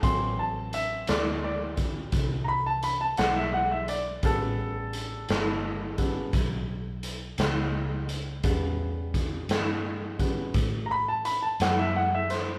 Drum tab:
HH |x-xx-xx-xx-x|x-xx-xx-xx-x|x-xx-xx-xx-x|
SD |---o-----o--|---o-----o--|---o-----o-o|
BD |o----oo-----|o----oo-----|o-o--oo-----|